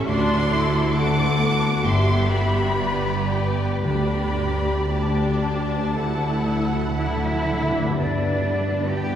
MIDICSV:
0, 0, Header, 1, 10, 480
1, 0, Start_track
1, 0, Key_signature, 1, "major"
1, 0, Tempo, 886263
1, 43, Time_signature, 4, 2, 24, 8
1, 1003, Tempo, 949367
1, 1483, Tempo, 1058201
1, 2923, Tempo, 1010101
1, 3883, Tempo, 881057
1, 4514, End_track
2, 0, Start_track
2, 0, Title_t, "Violin section"
2, 0, Program_c, 0, 48
2, 43, Note_on_c, 0, 84, 116
2, 501, Note_off_c, 0, 84, 0
2, 521, Note_on_c, 0, 86, 122
2, 1000, Note_on_c, 0, 84, 108
2, 1003, Note_off_c, 0, 86, 0
2, 1232, Note_on_c, 0, 83, 102
2, 1234, Note_off_c, 0, 84, 0
2, 1708, Note_off_c, 0, 83, 0
2, 1715, Note_on_c, 0, 79, 79
2, 1954, Note_on_c, 0, 83, 95
2, 1958, Note_off_c, 0, 79, 0
2, 2432, Note_off_c, 0, 83, 0
2, 2445, Note_on_c, 0, 81, 80
2, 3650, Note_off_c, 0, 81, 0
2, 3879, Note_on_c, 0, 74, 61
2, 4514, Note_off_c, 0, 74, 0
2, 4514, End_track
3, 0, Start_track
3, 0, Title_t, "Flute section"
3, 0, Program_c, 1, 73
3, 3409, Note_on_c, 1, 76, 72
3, 3867, Note_off_c, 1, 76, 0
3, 3888, Note_on_c, 1, 74, 61
3, 4360, Note_off_c, 1, 74, 0
3, 4369, Note_on_c, 1, 79, 71
3, 4514, Note_off_c, 1, 79, 0
3, 4514, End_track
4, 0, Start_track
4, 0, Title_t, "Violin section"
4, 0, Program_c, 2, 48
4, 43, Note_on_c, 2, 74, 83
4, 44, Note_on_c, 2, 69, 80
4, 513, Note_off_c, 2, 74, 0
4, 518, Note_on_c, 2, 78, 71
4, 984, Note_off_c, 2, 69, 0
4, 997, Note_on_c, 2, 67, 70
4, 998, Note_on_c, 2, 76, 70
4, 1001, Note_off_c, 2, 78, 0
4, 1479, Note_on_c, 2, 71, 69
4, 1481, Note_off_c, 2, 67, 0
4, 1481, Note_off_c, 2, 76, 0
4, 1482, Note_on_c, 2, 74, 66
4, 1712, Note_off_c, 2, 71, 0
4, 1718, Note_on_c, 2, 71, 70
4, 1949, Note_off_c, 2, 74, 0
4, 1955, Note_off_c, 2, 71, 0
4, 1957, Note_on_c, 2, 74, 67
4, 1959, Note_on_c, 2, 67, 66
4, 2904, Note_off_c, 2, 74, 0
4, 2919, Note_on_c, 2, 69, 63
4, 2920, Note_on_c, 2, 78, 65
4, 2923, Note_off_c, 2, 67, 0
4, 3762, Note_off_c, 2, 69, 0
4, 3780, Note_off_c, 2, 78, 0
4, 3882, Note_on_c, 2, 71, 62
4, 4514, Note_off_c, 2, 71, 0
4, 4514, End_track
5, 0, Start_track
5, 0, Title_t, "Harp"
5, 0, Program_c, 3, 46
5, 0, Note_on_c, 3, 45, 88
5, 0, Note_on_c, 3, 52, 64
5, 0, Note_on_c, 3, 61, 60
5, 0, Note_on_c, 3, 67, 73
5, 0, Note_on_c, 3, 73, 67
5, 0, Note_on_c, 3, 76, 72
5, 0, Note_on_c, 3, 79, 72
5, 0, Note_on_c, 3, 88, 69
5, 42, Note_on_c, 3, 50, 80
5, 61, Note_off_c, 3, 45, 0
5, 61, Note_off_c, 3, 52, 0
5, 61, Note_off_c, 3, 61, 0
5, 63, Note_off_c, 3, 67, 0
5, 63, Note_off_c, 3, 73, 0
5, 63, Note_off_c, 3, 79, 0
5, 163, Note_on_c, 3, 57, 57
5, 281, Note_on_c, 3, 62, 60
5, 402, Note_on_c, 3, 66, 60
5, 514, Note_off_c, 3, 76, 0
5, 520, Note_on_c, 3, 76, 61
5, 637, Note_on_c, 3, 74, 60
5, 758, Note_on_c, 3, 78, 59
5, 869, Note_off_c, 3, 88, 0
5, 875, Note_on_c, 3, 88, 63
5, 999, Note_on_c, 3, 43, 74
5, 1018, Note_off_c, 3, 88, 0
5, 1020, Note_off_c, 3, 76, 0
5, 1020, Note_off_c, 3, 78, 0
5, 1021, Note_off_c, 3, 50, 0
5, 1021, Note_off_c, 3, 57, 0
5, 1021, Note_off_c, 3, 66, 0
5, 1115, Note_on_c, 3, 50, 53
5, 1226, Note_off_c, 3, 62, 0
5, 1232, Note_on_c, 3, 62, 59
5, 1352, Note_on_c, 3, 67, 53
5, 1476, Note_off_c, 3, 74, 0
5, 1482, Note_on_c, 3, 74, 57
5, 1588, Note_off_c, 3, 67, 0
5, 1593, Note_on_c, 3, 67, 55
5, 1713, Note_on_c, 3, 79, 59
5, 1835, Note_on_c, 3, 86, 56
5, 1951, Note_off_c, 3, 50, 0
5, 1957, Note_on_c, 3, 50, 65
5, 1977, Note_off_c, 3, 43, 0
5, 2077, Note_on_c, 3, 57, 47
5, 2190, Note_off_c, 3, 62, 0
5, 2195, Note_on_c, 3, 62, 50
5, 2315, Note_off_c, 3, 67, 0
5, 2320, Note_on_c, 3, 67, 47
5, 2435, Note_off_c, 3, 74, 0
5, 2441, Note_on_c, 3, 74, 48
5, 2559, Note_off_c, 3, 67, 0
5, 2564, Note_on_c, 3, 67, 53
5, 2677, Note_off_c, 3, 79, 0
5, 2682, Note_on_c, 3, 79, 49
5, 2799, Note_off_c, 3, 86, 0
5, 2805, Note_on_c, 3, 86, 53
5, 2915, Note_off_c, 3, 50, 0
5, 2921, Note_on_c, 3, 50, 62
5, 2941, Note_off_c, 3, 79, 0
5, 2942, Note_off_c, 3, 67, 0
5, 3034, Note_off_c, 3, 57, 0
5, 3040, Note_on_c, 3, 57, 46
5, 3155, Note_off_c, 3, 62, 0
5, 3160, Note_on_c, 3, 62, 47
5, 3278, Note_on_c, 3, 66, 44
5, 3397, Note_off_c, 3, 74, 0
5, 3402, Note_on_c, 3, 74, 51
5, 3517, Note_off_c, 3, 66, 0
5, 3522, Note_on_c, 3, 66, 48
5, 3651, Note_on_c, 3, 78, 53
5, 3764, Note_off_c, 3, 86, 0
5, 3770, Note_on_c, 3, 86, 53
5, 3797, Note_on_c, 3, 43, 51
5, 3814, Note_off_c, 3, 62, 0
5, 3820, Note_on_c, 3, 62, 42
5, 3842, Note_on_c, 3, 67, 46
5, 3863, Note_on_c, 3, 71, 45
5, 3900, Note_off_c, 3, 57, 0
5, 3901, Note_off_c, 3, 50, 0
5, 3901, Note_off_c, 3, 66, 0
5, 3903, Note_off_c, 3, 78, 0
5, 4514, Note_off_c, 3, 43, 0
5, 4514, Note_off_c, 3, 62, 0
5, 4514, Note_off_c, 3, 67, 0
5, 4514, Note_off_c, 3, 71, 0
5, 4514, Note_off_c, 3, 74, 0
5, 4514, Note_off_c, 3, 86, 0
5, 4514, End_track
6, 0, Start_track
6, 0, Title_t, "Viola section"
6, 0, Program_c, 4, 48
6, 41, Note_on_c, 4, 62, 90
6, 43, Note_on_c, 4, 66, 83
6, 277, Note_off_c, 4, 62, 0
6, 283, Note_on_c, 4, 64, 86
6, 513, Note_off_c, 4, 66, 0
6, 518, Note_off_c, 4, 64, 0
6, 519, Note_on_c, 4, 57, 76
6, 520, Note_on_c, 4, 66, 76
6, 759, Note_on_c, 4, 59, 81
6, 761, Note_off_c, 4, 57, 0
6, 992, Note_off_c, 4, 66, 0
6, 1004, Note_on_c, 4, 67, 78
6, 1954, Note_off_c, 4, 67, 0
6, 1957, Note_on_c, 4, 62, 64
6, 1958, Note_off_c, 4, 59, 0
6, 1959, Note_on_c, 4, 67, 64
6, 2386, Note_off_c, 4, 62, 0
6, 2387, Note_off_c, 4, 67, 0
6, 2445, Note_on_c, 4, 62, 74
6, 2906, Note_off_c, 4, 62, 0
6, 2920, Note_on_c, 4, 64, 81
6, 3401, Note_off_c, 4, 64, 0
6, 3406, Note_on_c, 4, 62, 62
6, 3882, Note_on_c, 4, 59, 66
6, 3884, Note_off_c, 4, 62, 0
6, 4514, Note_off_c, 4, 59, 0
6, 4514, End_track
7, 0, Start_track
7, 0, Title_t, "French horn section"
7, 0, Program_c, 5, 60
7, 3877, Note_on_c, 5, 62, 56
7, 3879, Note_on_c, 5, 59, 57
7, 4514, Note_off_c, 5, 59, 0
7, 4514, Note_off_c, 5, 62, 0
7, 4514, End_track
8, 0, Start_track
8, 0, Title_t, "Cello section"
8, 0, Program_c, 6, 48
8, 40, Note_on_c, 6, 38, 91
8, 982, Note_off_c, 6, 38, 0
8, 1002, Note_on_c, 6, 43, 79
8, 1957, Note_on_c, 6, 38, 75
8, 1959, Note_off_c, 6, 43, 0
8, 3383, Note_off_c, 6, 38, 0
8, 3401, Note_on_c, 6, 64, 83
8, 3863, Note_off_c, 6, 64, 0
8, 3880, Note_on_c, 6, 62, 70
8, 4365, Note_off_c, 6, 62, 0
8, 4366, Note_on_c, 6, 67, 77
8, 4514, Note_off_c, 6, 67, 0
8, 4514, End_track
9, 0, Start_track
9, 0, Title_t, "Timpani"
9, 0, Program_c, 7, 47
9, 1002, Note_on_c, 7, 43, 94
9, 1700, Note_off_c, 7, 43, 0
9, 1961, Note_on_c, 7, 50, 92
9, 2669, Note_off_c, 7, 50, 0
9, 2924, Note_on_c, 7, 50, 39
9, 2958, Note_off_c, 7, 50, 0
9, 2964, Note_on_c, 7, 50, 36
9, 3000, Note_off_c, 7, 50, 0
9, 3006, Note_on_c, 7, 50, 39
9, 3041, Note_off_c, 7, 50, 0
9, 3047, Note_on_c, 7, 50, 40
9, 3085, Note_off_c, 7, 50, 0
9, 3092, Note_on_c, 7, 50, 41
9, 3123, Note_off_c, 7, 50, 0
9, 3128, Note_on_c, 7, 50, 43
9, 3160, Note_off_c, 7, 50, 0
9, 3166, Note_on_c, 7, 50, 45
9, 3202, Note_off_c, 7, 50, 0
9, 3208, Note_on_c, 7, 50, 47
9, 3242, Note_off_c, 7, 50, 0
9, 3247, Note_on_c, 7, 50, 51
9, 3286, Note_off_c, 7, 50, 0
9, 3291, Note_on_c, 7, 50, 52
9, 3324, Note_off_c, 7, 50, 0
9, 3367, Note_on_c, 7, 50, 60
9, 3400, Note_off_c, 7, 50, 0
9, 3406, Note_on_c, 7, 50, 61
9, 3441, Note_off_c, 7, 50, 0
9, 3447, Note_on_c, 7, 50, 69
9, 3484, Note_off_c, 7, 50, 0
9, 3489, Note_on_c, 7, 50, 70
9, 3525, Note_off_c, 7, 50, 0
9, 3531, Note_on_c, 7, 50, 70
9, 3570, Note_off_c, 7, 50, 0
9, 3576, Note_on_c, 7, 50, 72
9, 3612, Note_off_c, 7, 50, 0
9, 3618, Note_on_c, 7, 50, 77
9, 3654, Note_off_c, 7, 50, 0
9, 3660, Note_on_c, 7, 50, 84
9, 3700, Note_off_c, 7, 50, 0
9, 3706, Note_on_c, 7, 50, 85
9, 3741, Note_off_c, 7, 50, 0
9, 3746, Note_on_c, 7, 50, 97
9, 3781, Note_off_c, 7, 50, 0
9, 3787, Note_on_c, 7, 50, 93
9, 3816, Note_off_c, 7, 50, 0
9, 3822, Note_on_c, 7, 50, 99
9, 3859, Note_off_c, 7, 50, 0
9, 3879, Note_on_c, 7, 43, 75
9, 4514, Note_off_c, 7, 43, 0
9, 4514, End_track
10, 0, Start_track
10, 0, Title_t, "Double bass section"
10, 0, Program_c, 8, 48
10, 41, Note_on_c, 8, 38, 88
10, 983, Note_off_c, 8, 38, 0
10, 999, Note_on_c, 8, 31, 76
10, 1958, Note_off_c, 8, 31, 0
10, 1958, Note_on_c, 8, 38, 67
10, 3762, Note_off_c, 8, 38, 0
10, 3883, Note_on_c, 8, 43, 62
10, 4514, Note_off_c, 8, 43, 0
10, 4514, End_track
0, 0, End_of_file